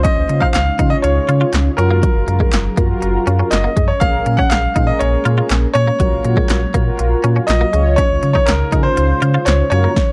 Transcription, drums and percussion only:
0.05 kick loud
0.05 closed hi-hat medium
0.29 closed hi-hat medium
0.42 kick medium
0.54 snare medium
0.54 clap loud
0.54 closed hi-hat medium
0.79 kick medium
0.79 closed hi-hat medium
1.04 closed hi-hat loud
1.29 closed hi-hat medium
1.53 snare medium
1.53 clap loud
1.53 closed hi-hat medium
1.78 closed hi-hat medium
2.03 kick loud
2.03 closed hi-hat medium
2.28 closed hi-hat medium
2.40 kick medium
2.52 snare medium
2.52 clap loud
2.52 closed hi-hat medium
2.77 kick medium
2.77 closed hi-hat medium
3.02 closed hi-hat loud
3.27 closed hi-hat medium
3.52 snare medium
3.52 clap loud
3.52 closed hi-hat medium
3.77 kick medium
3.77 closed hi-hat medium
4.01 kick loud
4.01 closed hi-hat medium
4.26 closed hi-hat medium
4.38 kick medium
4.51 snare medium
4.51 clap loud
4.51 closed hi-hat medium
4.76 kick medium
4.76 closed hi-hat medium
5.01 closed hi-hat medium
5.25 closed hi-hat medium
5.50 snare medium
5.50 clap loud
5.50 closed hi-hat medium
5.75 closed hi-hat medium
6.00 kick loud
6.00 closed hi-hat medium
6.24 closed hi-hat medium
6.37 kick medium
6.49 snare medium
6.49 clap loud
6.49 closed hi-hat medium
6.74 kick medium
6.74 closed hi-hat medium
6.99 closed hi-hat loud
7.24 closed hi-hat medium
7.48 snare medium
7.48 clap loud
7.48 closed hi-hat medium
7.73 closed hi-hat medium
7.98 kick loud
7.98 closed hi-hat medium
8.23 closed hi-hat medium
8.35 kick medium
8.48 snare medium
8.48 clap loud
8.48 closed hi-hat medium
8.72 kick medium
8.72 closed hi-hat medium
8.97 closed hi-hat loud
9.22 closed hi-hat medium
9.47 snare medium
9.47 clap loud
9.47 closed hi-hat medium
9.72 closed hi-hat medium
9.96 kick loud
9.96 snare medium

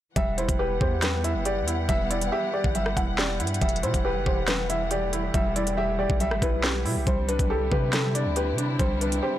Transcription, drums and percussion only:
0.16 kick loud
0.16 closed hi-hat medium
0.38 closed hi-hat medium
0.49 kick loud
0.49 closed hi-hat medium
0.81 kick loud
1.02 cross-stick medium
1.02 snare loud
1.02 closed hi-hat medium
1.24 closed hi-hat medium
1.45 closed hi-hat medium
1.68 closed hi-hat medium
1.89 kick loud
1.89 closed hi-hat medium
2.11 closed hi-hat medium
2.21 closed hi-hat medium
2.64 kick loud
2.75 closed hi-hat medium
2.86 cross-stick medium
2.97 kick medium
2.97 closed hi-hat medium
3.18 snare loud
3.40 closed hi-hat medium
3.47 closed hi-hat medium
3.54 closed hi-hat medium
3.62 kick loud
3.62 closed hi-hat medium
3.69 closed hi-hat medium
3.76 closed hi-hat medium
3.83 closed hi-hat medium
3.94 kick loud
3.94 closed hi-hat medium
4.26 kick loud
4.48 cross-stick medium
4.48 snare loud
4.48 closed hi-hat medium
4.70 closed hi-hat medium
4.91 closed hi-hat medium
5.13 closed hi-hat medium
5.34 kick loud
5.34 closed hi-hat medium
5.56 closed hi-hat medium
5.67 closed hi-hat medium
6.10 kick loud
6.20 closed hi-hat medium
6.31 cross-stick medium
6.42 kick medium
6.42 closed hi-hat medium
6.64 snare loud
6.86 open hi-hat medium
7.07 kick loud
7.07 closed hi-hat medium
7.29 closed hi-hat medium
7.39 kick loud
7.39 closed hi-hat medium
7.72 kick loud
7.93 cross-stick medium
7.93 snare loud
7.93 closed hi-hat medium
8.15 closed hi-hat medium
8.36 closed hi-hat medium
8.58 closed hi-hat medium
8.79 kick loud
8.79 closed hi-hat medium
9.01 closed hi-hat medium
9.12 closed hi-hat medium

